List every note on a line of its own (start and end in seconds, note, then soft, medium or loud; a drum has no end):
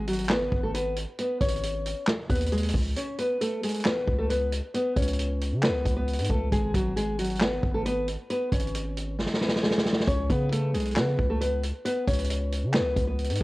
0.00 0.48 G#1 loud
0.08 0.29 F#3 medium
0.08 0.29 F#4 medium
0.08 closed hi-hat medium
0.13 closed hi-hat medium
0.19 closed hi-hat medium
0.24 closed hi-hat soft
0.29 0.62 B3 medium
0.29 0.61 B4 medium
0.29 snare loud
0.29 clap loud
0.52 1.05 G#1 loud
0.52 kick medium
0.63 0.74 A3 medium
0.63 0.74 A4 medium
0.74 0.96 B3 medium
0.74 0.95 B4 medium
0.74 closed hi-hat medium
0.96 closed hi-hat medium
1.19 1.40 B3 medium
1.19 1.40 B4 medium
1.19 closed hi-hat medium
1.41 1.94 G#1 loud
1.41 2.04 C#4 medium
1.41 2.04 C#5 medium
1.41 kick loud
1.41 closed hi-hat medium
1.48 closed hi-hat medium
1.56 closed hi-hat soft
1.63 closed hi-hat medium
1.86 closed hi-hat medium
2.07 snare loud
2.07 clap loud
2.30 2.72 D#2 loud
2.30 2.51 B3 medium
2.30 2.51 B4 medium
2.30 kick medium
2.30 closed hi-hat medium
2.35 closed hi-hat medium
2.41 closed hi-hat medium
2.46 closed hi-hat medium
2.52 2.74 G#3 medium
2.52 2.73 G#4 medium
2.52 closed hi-hat soft
2.58 closed hi-hat medium
2.63 closed hi-hat medium
2.69 closed hi-hat medium
2.74 2.95 C#2 loud
2.74 kick medium
2.74 open hi-hat medium
2.96 3.18 C#4 medium
2.96 3.18 C#5 medium
2.96 closed hi-hat medium
3.19 3.40 B3 medium
3.19 3.40 B4 medium
3.19 closed hi-hat medium
3.41 3.62 A3 medium
3.41 3.62 A4 medium
3.41 closed hi-hat medium
3.63 3.85 G#3 medium
3.63 3.84 G#4 medium
3.63 closed hi-hat medium
3.69 closed hi-hat medium
3.74 closed hi-hat medium
3.80 closed hi-hat soft
3.85 4.17 B3 medium
3.85 4.17 B4 medium
3.85 snare loud
3.85 clap loud
4.08 4.61 C#2 loud
4.08 kick medium
4.19 4.30 A3 medium
4.19 4.29 A4 medium
4.30 4.51 B3 medium
4.30 4.51 B4 medium
4.30 closed hi-hat medium
4.52 closed hi-hat medium
4.74 4.96 B3 medium
4.74 4.95 B4 medium
4.74 closed hi-hat medium
4.96 5.53 C#2 loud
4.96 5.60 C#4 medium
4.96 5.59 C#5 medium
4.96 kick medium
4.96 closed hi-hat medium
5.02 closed hi-hat medium
5.07 closed hi-hat medium
5.13 closed hi-hat medium
5.19 closed hi-hat medium
5.41 closed hi-hat medium
5.52 5.70 C#3 loud
5.62 5.95 B3 medium
5.62 5.95 B4 medium
5.62 snare loud
5.62 clap loud
5.69 5.84 C#2 loud
5.85 6.20 C#2 loud
5.85 kick medium
5.85 closed hi-hat medium
5.96 6.28 B3 medium
5.96 6.28 B4 medium
6.08 closed hi-hat soft
6.13 closed hi-hat medium
6.19 6.29 G#2 loud
6.19 closed hi-hat medium
6.24 closed hi-hat medium
6.30 6.51 C#2 loud
6.30 6.51 A3 medium
6.30 6.51 A4 medium
6.30 kick medium
6.52 6.73 G#1 loud
6.52 6.74 G#3 medium
6.52 6.73 G#4 medium
6.52 kick loud
6.52 closed hi-hat medium
6.74 7.60 G#1 loud
6.74 6.96 F#3 medium
6.74 6.95 F#4 medium
6.74 kick medium
6.74 closed hi-hat medium
6.96 7.18 G#3 medium
6.96 7.17 G#4 medium
6.96 closed hi-hat medium
7.19 7.40 F#3 medium
7.19 7.40 F#4 medium
7.19 closed hi-hat medium
7.24 closed hi-hat medium
7.30 closed hi-hat medium
7.35 closed hi-hat soft
7.40 7.73 B3 medium
7.40 7.72 B4 loud
7.40 snare loud
7.40 clap medium
7.63 8.16 G#1 loud
7.63 kick medium
7.74 7.85 A3 medium
7.74 7.85 A4 medium
7.86 8.07 B3 medium
7.86 8.07 B4 medium
7.86 closed hi-hat medium
8.08 closed hi-hat medium
8.30 8.51 B3 medium
8.30 8.51 B4 loud
8.30 closed hi-hat medium
8.52 9.27 G#1 loud
8.52 9.15 C#4 medium
8.52 9.15 C#5 medium
8.52 kick medium
8.52 closed hi-hat medium
8.59 closed hi-hat medium
8.67 closed hi-hat soft
8.75 closed hi-hat medium
8.97 closed hi-hat medium
9.19 snare medium
9.26 snare medium
9.34 snare medium
9.41 9.62 B3 medium
9.41 9.62 B4 medium
9.41 snare medium
9.48 snare medium
9.56 snare medium
9.63 9.85 G#3 medium
9.63 9.84 G#4 medium
9.63 snare medium
9.71 snare medium
9.78 snare loud
9.85 snare medium
9.93 snare loud
10.00 snare medium
10.07 10.29 C#2 loud
10.07 10.29 C#4 medium
10.07 10.29 C#5 medium
10.07 kick loud
10.07 closed hi-hat medium
10.30 10.76 C#3 loud
10.30 10.51 B3 medium
10.30 10.51 B4 medium
10.30 kick medium
10.30 closed hi-hat medium
10.52 10.73 A3 medium
10.52 10.73 A4 medium
10.52 closed hi-hat medium
10.74 10.98 B1 loud
10.74 10.96 G#3 medium
10.74 10.95 G#4 medium
10.74 closed hi-hat medium
10.80 closed hi-hat medium
10.85 closed hi-hat medium
10.91 closed hi-hat soft
10.96 11.18 C#3 loud
10.96 11.28 B3 medium
10.96 11.28 B4 medium
10.96 snare loud
10.96 clap loud
11.19 11.72 C#2 loud
11.19 kick medium
11.30 11.41 A3 medium
11.30 11.40 A4 medium
11.41 11.62 B3 medium
11.41 11.62 B4 medium
11.41 closed hi-hat medium
11.63 closed hi-hat medium
11.85 12.07 B3 medium
11.85 12.06 B4 medium
11.85 closed hi-hat medium
12.07 12.65 C#2 loud
12.07 12.71 C#4 medium
12.07 12.70 C#5 medium
12.07 kick medium
12.07 closed hi-hat medium
12.13 closed hi-hat medium
12.19 closed hi-hat medium
12.24 closed hi-hat medium
12.30 closed hi-hat medium
12.52 closed hi-hat medium
12.63 12.81 C#3 loud
12.73 13.06 B3 medium
12.73 13.06 B4 medium
12.73 snare loud
12.73 clap loud
12.80 12.96 C#2 loud
12.96 13.31 C#2 loud
12.96 kick medium
12.96 closed hi-hat medium
13.07 13.39 B3 medium
13.07 13.39 B4 medium
13.19 closed hi-hat soft
13.24 closed hi-hat medium
13.30 13.40 G#2 loud
13.30 closed hi-hat medium
13.35 closed hi-hat medium